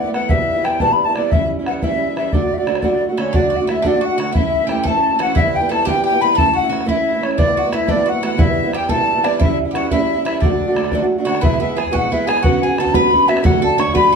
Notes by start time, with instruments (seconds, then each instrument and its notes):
Already playing: accordion D5, flute F#5
0.05 steel-string acoustic guitar A3 B3 E4
0.13 steel-string acoustic guitar E3 A3 B3 E4, flute F#5, accordion F#5, bodhran
0.29 steel-string acoustic guitar E2 B2 E3 G3 B3 E4, accordion E5, flute E5, bodhran
0.38 steel-string acoustic guitar E3 G3 B3 E4
0.49 bodhran
0.56 steel-string acoustic guitar E3 G3 B3 E4
0.64 steel-string acoustic guitar E3 G3 B3 E4, accordion G5, flute G5, bodhran
0.79 steel-string acoustic guitar E2 B2 E3 G3 B3 E4, accordion A5, flute A5, bodhran
0.90 steel-string acoustic guitar E3 G3 B3 E4, flute B5
1.04 steel-string acoustic guitar E4, accordion A5, flute A5
1.09 steel-string acoustic guitar E3 G3 B3
1.15 steel-string acoustic guitar E3 G3 B3 E4, accordion D5, flute D5, bodhran
1.30 steel-string acoustic guitar A2 E3 G3 C#4 E4, accordion E5, flute E5, bodhran
1.41 steel-string acoustic guitar G3 C#4 E4
1.50 bodhran
1.59 steel-string acoustic guitar G3 C#4 E4
1.66 steel-string acoustic guitar E3 G3, accordion F#5, flute F#5, bodhran
1.70 steel-string acoustic guitar C#4 E4
1.82 steel-string acoustic guitar A2 E3 G3 C#4 E4, accordion E5, flute E5, bodhran
1.91 steel-string acoustic guitar G3 C#4 E4
2.09 steel-string acoustic guitar G3 C#4 E4
2.16 steel-string acoustic guitar E3 G3 C#4 E4, accordion E5, flute E5, bodhran
2.32 steel-string acoustic guitar D3 A3 D4 F#4, accordion D5, flute D5, bodhran
2.42 steel-string acoustic guitar A3 D4 F#4
2.52 flute E5, bodhran
2.58 steel-string acoustic guitar A3 D4 F#4, accordion D5, flute D5
2.66 steel-string acoustic guitar D3 A3 D4 F#4, bodhran
2.75 flute C#5, bodhran
2.81 steel-string acoustic guitar D3 A3 D4 F#4, accordion D5, flute D5, bodhran
2.91 steel-string acoustic guitar A3 D4 F#4
3.09 steel-string acoustic guitar A3 D4 F#4
3.17 steel-string acoustic guitar D3 A3 D4 F#4, bouzouki C#4, accordion C#5, bodhran
3.21 flute C#5
3.33 steel-string acoustic guitar D3 A3 D4 F#4, bouzouki D4, accordion D5, flute D5, bodhran
3.42 steel-string acoustic guitar A3 D4 F#4
3.50 bouzouki F#4, bodhran
3.56 flute F#5
3.60 steel-string acoustic guitar A3 D4 F#4
3.67 steel-string acoustic guitar D3 A3 D4, bouzouki E4, accordion E5, flute E5, bodhran
3.72 steel-string acoustic guitar F#4
3.82 steel-string acoustic guitar D3 A3 D4 F#4, bouzouki D4, accordion D5, bodhran
3.87 flute D5
3.95 steel-string acoustic guitar A3 D4 F#4
4.01 bouzouki F#4, accordion F#5, flute F#5
4.12 steel-string acoustic guitar A3 D4 F#4
4.18 steel-string acoustic guitar D3 A3 D4 F#4, bouzouki F#4, bodhran
4.22 flute F#5
4.32 steel-string acoustic guitar A2 E3 A3 C#4 E4, bouzouki E4, accordion E5, bodhran
4.37 flute E5
4.43 steel-string acoustic guitar A3 C#4 E4
4.54 bodhran
4.62 steel-string acoustic guitar A3 C#4 E4
4.67 steel-string acoustic guitar E3 A3, bouzouki G4, accordion G5, flute G5, bodhran
4.72 steel-string acoustic guitar C#4 E4
4.83 steel-string acoustic guitar A2 E3 A3, bouzouki A4, accordion A5, flute A5, bodhran
4.88 steel-string acoustic guitar C#4 E4
4.95 steel-string acoustic guitar A3 C#4 E4
5.12 steel-string acoustic guitar A3 C#4 E4
5.19 steel-string acoustic guitar E3 A3 C#4 E4, bouzouki F#4, accordion F#5, flute F#5, bodhran
5.34 steel-string acoustic guitar G2 D3 E3 G3 B3 E4, bouzouki E4, accordion E5, bodhran
5.39 flute E5
5.44 steel-string acoustic guitar E3 G3 B3 E4
5.55 accordion G5, flute G5, bodhran
5.61 steel-string acoustic guitar E3 G3 B3 E4
5.69 steel-string acoustic guitar E3 G3 B3 E4, bouzouki A4, accordion A5, flute A5, bodhran
5.85 steel-string acoustic guitar G2 D3 E3 G3 B3 E4, bouzouki G4, accordion G5, flute G5, bodhran
5.95 steel-string acoustic guitar E3 G3 B3 E4
6.04 bouzouki G4, flute G5, accordion G5
6.12 steel-string acoustic guitar E3 G3 B3 E4
6.21 steel-string acoustic guitar E3 G3 B3 E4, bouzouki B4, flute B5, accordion B5
6.35 steel-string acoustic guitar A2 E3 A3 C#4 E4, bouzouki A4, flute A5, accordion A5, bodhran
6.48 steel-string acoustic guitar A3
6.53 bouzouki F#4, accordion F#5, flute F#5, bodhran
6.62 steel-string acoustic guitar A3 C#4 E4
6.69 steel-string acoustic guitar E3 A3 C#4 E4, bouzouki F#4, bodhran
6.81 bodhran
6.85 steel-string acoustic guitar A2 E3 A3 C#4 E4, bouzouki E4, accordion E5, bodhran
6.89 flute E5
6.94 steel-string acoustic guitar A3 C#4 E4
7.13 steel-string acoustic guitar A3 C#4 E4
7.20 steel-string acoustic guitar E3 A3 C#4 E4, accordion C#5, flute C#5, bodhran
7.31 bodhran
7.37 steel-string acoustic guitar A2 E3 A3 B3 E4, bouzouki D4, accordion D5, flute D5, bodhran
7.46 steel-string acoustic guitar A3 B3 E4
7.57 bouzouki F#4, flute F#5, bodhran
7.64 steel-string acoustic guitar A3 B3 E4
7.71 steel-string acoustic guitar E3 A3 B3 E4, bouzouki E4, accordion E5, flute E5, bodhran
7.87 steel-string acoustic guitar A2 E3 A3 B3 E4, bouzouki D4, flute D5, accordion D5, bodhran
7.95 steel-string acoustic guitar A3 B3 E4
8.06 bouzouki F#4, flute F#5, accordion F#5
8.13 steel-string acoustic guitar A3 B3 E4
8.21 steel-string acoustic guitar E3 A3 B3 E4, bouzouki F#4, flute F#5, bodhran
8.26 accordion F#5
8.36 steel-string acoustic guitar E2 B2 E3 G3 B3 E4, bouzouki E4, accordion E5, flute F#5, bodhran
8.43 steel-string acoustic guitar E4, flute E5
8.48 steel-string acoustic guitar E3 G3 B3
8.57 bodhran
8.64 steel-string acoustic guitar E3 G3 B3 E4
8.71 steel-string acoustic guitar E3 G3 B3 E4, bouzouki G4, bodhran
8.75 flute G5, accordion G5
8.89 steel-string acoustic guitar E2 B2 E3 G3 B3 E4, bouzouki A4, flute A5, accordion A5, bodhran
8.99 steel-string acoustic guitar E3 G3 B3
9.15 steel-string acoustic guitar E3 G3 B3 E4
9.22 steel-string acoustic guitar E3 G3 B3 E4, bouzouki D4, flute D5, bodhran
9.27 accordion D5
9.38 steel-string acoustic guitar A2 E3 G3 C#4 E4, bouzouki E4, flute E5, bodhran
9.43 accordion E5
9.49 steel-string acoustic guitar G3 C#4 E4
9.60 bodhran
9.65 steel-string acoustic guitar G3 C#4 E4
9.71 steel-string acoustic guitar E3 G3, bouzouki G4, flute F#5
9.75 steel-string acoustic guitar C#4 E4, bouzouki F#4, accordion F#5, bodhran
9.89 steel-string acoustic guitar A2 E3 G3 C#4 E4, bouzouki E4, flute E5, accordion E5, bodhran
9.99 steel-string acoustic guitar G3 C#4 E4
10.17 steel-string acoustic guitar G3 C#4 E4
10.24 steel-string acoustic guitar E3 G3 C#4, bouzouki E4, flute E5, accordion E5, bodhran
10.28 steel-string acoustic guitar E4
10.38 steel-string acoustic guitar D3, bouzouki D4, flute D5, accordion D5, bodhran
10.43 steel-string acoustic guitar A3 D4 F#4
10.51 steel-string acoustic guitar A3 D4 F#4
10.61 bodhran
10.67 steel-string acoustic guitar A3 D4 F#4
10.74 steel-string acoustic guitar D3 A3 D4 F#4, bodhran
10.84 bodhran
10.92 steel-string acoustic guitar D3 A3 D4 F#4, bodhran
11.02 steel-string acoustic guitar A3 D4 F#4
11.18 steel-string acoustic guitar A3 D4 F#4
11.25 steel-string acoustic guitar D3 A3 D4, bouzouki F#4, accordion F#5, bodhran
11.29 steel-string acoustic guitar F#4, flute F#5
11.35 bodhran
11.41 steel-string acoustic guitar E2 B2 E3 G#3 B3 G#4, bouzouki E4, accordion E5, flute E5, bodhran
11.60 steel-string acoustic guitar E3 G#3 B3 G#4, bouzouki E4, accordion E5, flute E5, bodhran
11.75 steel-string acoustic guitar E3 G#3 B3 G#4, bouzouki G#4, flute G#5, accordion G#5, bodhran
11.87 bodhran
11.91 steel-string acoustic guitar E2 B2 E3 G#3 B3 G#4, bouzouki F#4, accordion F#5, flute F#5, bodhran
12.10 steel-string acoustic guitar E3 G#3 B3 G#4, bouzouki E4, flute E5, bodhran
12.26 steel-string acoustic guitar E3 G#3 B3 G#4, bouzouki G#4, accordion G#5, flute G#5, bodhran
12.37 bodhran
12.42 steel-string acoustic guitar D3 B3 C#4 F#4, bouzouki F#4, accordion F#5, flute F#5, bodhran
12.62 steel-string acoustic guitar B3 C#4 F#4, bouzouki G#4, accordion G#5
12.78 steel-string acoustic guitar D3 B3 C#4 F#4, bouzouki A4, flute A5, accordion A5, bodhran
12.86 bodhran
12.93 steel-string acoustic guitar D3 B3 C#4 F#4, bouzouki B4, flute B5, accordion B5, bodhran
13.11 steel-string acoustic guitar D3 B3 C#4 F#4, bodhran
13.28 steel-string acoustic guitar B3 C#4 F#4, bouzouki E4, flute E5, accordion E5, bodhran
13.37 bodhran
13.43 steel-string acoustic guitar D3 A3 D4 F#4, bouzouki F#4, accordion F#5, flute F#5, bodhran
13.61 steel-string acoustic guitar A3 D4 F#4, bouzouki A4, accordion A5, flute A5, bodhran
13.76 steel-string acoustic guitar D3 A3 D4 F#4, bouzouki C#5, flute C#6, accordion C#6, bodhran
13.88 bodhran
13.94 steel-string acoustic guitar D3 A3 D4 F#4, bouzouki B4, accordion B5, flute B5, bodhran
14.11 steel-string acoustic guitar D3, bouzouki A4